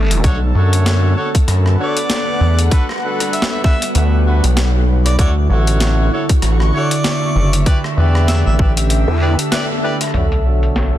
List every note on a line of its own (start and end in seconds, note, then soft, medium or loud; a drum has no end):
0.00 0.22 A1 loud
0.00 3.72 D3 medium
0.00 0.21 G3 medium
0.00 2.67 A3 medium
0.00 0.21 D4 medium
0.00 0.24 G4 loud
0.00 6.19 A4 medium
0.00 1.15 E5 medium
0.11 closed hi-hat medium
0.24 0.53 B1 loud
0.24 2.69 B3 medium
0.24 0.37 D4 loud
0.24 2.69 D4 medium
0.24 0.37 F#4 medium
0.24 0.37 A4 medium
0.24 0.37 C#5 loud
0.24 kick loud
0.24 closed hi-hat soft
0.55 1.15 F#2 medium
0.55 1.14 D4 medium
0.55 1.14 F#4 medium
0.55 1.14 A4 medium
0.55 1.14 C#5 medium
0.73 closed hi-hat medium
0.86 snare loud
0.86 closed hi-hat soft
1.17 1.30 D4 medium
1.17 1.30 F#4 medium
1.17 1.30 A4 medium
1.17 1.30 C#5 medium
1.35 3.61 B4 medium
1.35 6.19 F#5 medium
1.35 kick loud
1.35 closed hi-hat medium
1.48 1.77 F#2 loud
1.48 cross-stick soft
1.48 closed hi-hat soft
1.66 cross-stick soft
1.79 1.99 D4 medium
1.79 1.99 F#4 medium
1.79 1.99 A4 medium
1.79 1.99 C#5 medium
1.79 2.66 D5 medium
1.97 closed hi-hat medium
2.10 snare loud
2.10 closed hi-hat medium
2.41 2.69 E2 loud
2.59 closed hi-hat medium
2.71 5.17 G3 medium
2.71 6.19 B3 medium
2.71 2.85 D4 loud
2.71 2.85 F#4 medium
2.71 7.62 F#4 medium
2.71 2.85 A4 medium
2.71 5.17 A4 medium
2.71 2.85 B4 loud
2.71 5.17 B4 medium
2.71 kick loud
2.71 closed hi-hat soft
2.89 cross-stick soft
2.91 cross-stick soft
2.96 cross-stick soft
2.98 cross-stick soft
3.00 3.61 D4 medium
3.00 3.61 F#4 medium
3.00 3.61 A4 medium
3.00 3.61 B4 medium
3.00 cross-stick soft
3.20 cross-stick medium
3.20 closed hi-hat medium
3.27 5.19 G3 medium
3.33 3.45 E5 medium
3.33 closed hi-hat soft
3.42 snare loud
3.51 3.60 E5 medium
3.64 3.78 D4 medium
3.64 3.78 F#4 medium
3.64 3.78 A4 medium
3.64 3.78 B4 medium
3.64 3.88 E5 medium
3.64 kick loud
3.64 snare soft
3.82 closed hi-hat medium
3.95 4.41 D2 loud
3.95 closed hi-hat soft
4.26 4.47 D4 medium
4.26 4.47 F#4 medium
4.26 4.47 A4 medium
4.26 4.47 B4 medium
4.44 5.17 B1 medium
4.44 closed hi-hat medium
4.57 snare loud
4.57 closed hi-hat medium
5.06 5.14 D5 medium
5.06 cross-stick soft
5.06 closed hi-hat medium
5.19 5.48 D2 medium
5.19 10.98 D3 loud
5.19 7.64 D3 medium
5.19 7.64 D4 medium
5.19 5.32 E4 loud
5.19 7.64 E4 medium
5.19 5.32 F#4 medium
5.19 5.32 A4 medium
5.19 5.32 C#5 loud
5.19 5.30 D5 medium
5.19 kick loud
5.19 closed hi-hat soft
5.50 6.10 A1 medium
5.50 6.09 E4 medium
5.50 6.09 F#4 medium
5.50 6.09 A4 medium
5.50 6.09 C#5 medium
5.67 closed hi-hat medium
5.80 snare loud
5.80 closed hi-hat soft
5.85 8.66 C#6 medium
6.04 7.66 F#4 medium
6.12 6.25 E4 medium
6.12 6.25 F#4 medium
6.12 6.25 A4 medium
6.12 6.25 C#5 medium
6.29 10.98 E5 medium
6.29 kick loud
6.29 closed hi-hat medium
6.42 6.71 A1 medium
6.42 cross-stick medium
6.42 closed hi-hat medium
6.60 cross-stick soft
6.74 6.94 E4 medium
6.74 6.94 F#4 medium
6.74 6.94 A4 medium
6.74 6.94 C#5 medium
6.74 7.61 D5 medium
6.91 closed hi-hat medium
7.04 snare loud
7.04 closed hi-hat soft
7.35 7.64 F#1 loud
7.53 closed hi-hat medium
7.66 10.12 A3 medium
7.66 10.11 D4 medium
7.66 7.80 E4 loud
7.66 7.80 G4 medium
7.66 10.12 G4 medium
7.66 7.80 B4 medium
7.66 7.80 D5 loud
7.66 kick loud
7.66 closed hi-hat soft
7.84 cross-stick soft
7.97 8.43 E2 medium
7.97 8.56 E4 medium
7.97 8.56 G4 medium
7.97 8.56 B4 medium
7.97 8.56 D5 medium
8.15 cross-stick medium
8.20 10.98 A4 medium
8.28 10.14 G4 medium
8.28 8.40 E5 medium
8.28 snare loud
8.28 closed hi-hat medium
8.46 8.57 A1 loud
8.46 8.55 E5 medium
8.59 9.05 A1 medium
8.59 8.73 E4 medium
8.59 8.73 G4 medium
8.59 8.73 B4 medium
8.59 8.73 D5 medium
8.59 kick loud
8.77 closed hi-hat medium
8.90 closed hi-hat medium
9.08 9.36 E2 loud
9.21 9.34 E4 medium
9.21 9.34 G4 medium
9.21 9.34 B4 medium
9.21 9.34 D5 loud
9.39 closed hi-hat medium
9.52 9.65 E4 loud
9.52 9.65 G4 medium
9.52 9.65 B4 medium
9.52 9.65 D5 loud
9.52 snare loud
9.52 closed hi-hat medium
9.83 9.96 E4 medium
9.83 9.96 G4 medium
9.83 9.96 B4 medium
9.83 9.96 D5 loud
10.01 cross-stick soft
10.01 closed hi-hat medium
10.04 cross-stick soft
10.07 cross-stick soft
10.11 10.98 B1 medium
10.11 10.98 A3 medium
10.11 10.98 B3 medium
10.11 10.98 D4 medium
10.11 10.27 D4 medium
10.11 10.27 F#4 medium
10.11 10.27 A4 medium
10.11 10.27 C#5 loud
10.11 cross-stick soft
10.11 closed hi-hat medium
10.11 sub drop medium
10.32 closed hi-hat soft
10.45 10.98 D4 medium
10.45 10.98 F#4 medium
10.45 10.98 A4 medium
10.45 10.98 C#5 medium
10.63 closed hi-hat soft
10.75 10.98 F#5 medium
10.75 snare loud
10.75 closed hi-hat medium